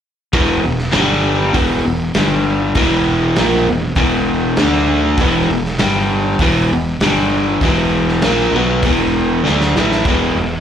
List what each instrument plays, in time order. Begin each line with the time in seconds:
0.33 fingered electric bass E1, overdriven electric guitar E2 B2 E3, kick, open hi-hat
0.63 fingered electric bass E1, overdriven electric guitar E2 B2
0.79 snare
0.92 fingered electric bass G1, overdriven electric guitar G2 D3 G3, snare, open hi-hat
1.53 fingered electric bass E1, overdriven electric guitar E2 B2 E3, kick, open hi-hat
1.85 fingered electric bass E1, overdriven electric guitar E2 B2
2.14 fingered electric bass G1, overdriven electric guitar G2 D3 G3, snare, open hi-hat
2.75 fingered electric bass E1, overdriven electric guitar E2 B2 E3, kick, open hi-hat
3.36 fingered electric bass A#1, overdriven electric guitar A#2 F3 A#3, snare, open hi-hat
3.66 fingered electric bass E1, overdriven electric guitar E2 B2
3.95 fingered electric bass E1, overdriven electric guitar E2 B2 E3, kick, open hi-hat
4.56 fingered electric bass D2, overdriven electric guitar D3 A3 D4, snare, open hi-hat
5.17 fingered electric bass E1, overdriven electric guitar E2 B2, kick, open hi-hat
5.22 overdriven electric guitar E3
5.49 fingered electric bass E1, overdriven electric guitar E2 B2
5.65 snare
5.79 fingered electric bass G1, overdriven electric guitar G2 D3 G3, snare, open hi-hat
6.39 fingered electric bass E1, overdriven electric guitar E2 B2 E3, kick, open hi-hat
6.71 fingered electric bass E1, overdriven electric guitar E2 B2
7.00 fingered electric bass G1, overdriven electric guitar G2 D3 G3, snare, open hi-hat
7.61 fingered electric bass E1, overdriven electric guitar E2 B2 E3, kick, open hi-hat
8.08 snare
8.22 fingered electric bass A#1, overdriven electric guitar A#2 F3 A#3, snare, open hi-hat
8.52 fingered electric bass B1, overdriven electric guitar B2 F#3 B3
8.82 fingered electric bass E1, overdriven electric guitar E2 B2 E3, kick, open hi-hat
9.44 fingered electric bass D2, overdriven electric guitar D3 A3 D4, snare
9.61 snare
9.74 fingered electric bass A1, overdriven electric guitar A2 E3, snare
9.78 overdriven electric guitar A3
9.92 snare
10.05 fingered electric bass E1, overdriven electric guitar E2 B2 E3, kick, open hi-hat, crash
10.36 fingered electric bass E1, overdriven electric guitar E2 B2